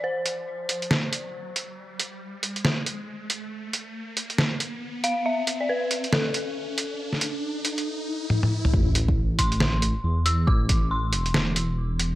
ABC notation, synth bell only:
X:1
M:4/4
L:1/16
Q:"Swing 16ths" 1/4=138
K:Am
V:1 name="Synth bell"
c12 z4 | z16 | z12 z2 f2 | e3 d B4 A8- |
A12 z4 | z6 c'8 e'2 | d'4 c'8 z4 |]